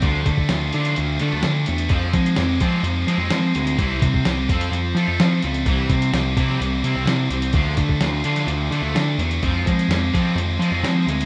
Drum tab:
HH |x-x-x-xxx-x-x-xx|x-xxx-x-x-x-x-xx|x-x-x-xxx-x-x-xx|x-xxx-x-x-x-x-xx|
SD |----o-------o---|----o-------o---|----o-------o---|----o--o----o---|
BD |o-oo------------|o-o---o---------|o-oo--o---------|o-o---o---------|

HH |x-x-x-xxx-x-x-xx|x-xxx-x-x-x-x-xx|
SD |----o--o----o---|----o-------o---|
BD |o-oo------------|o-o---o---------|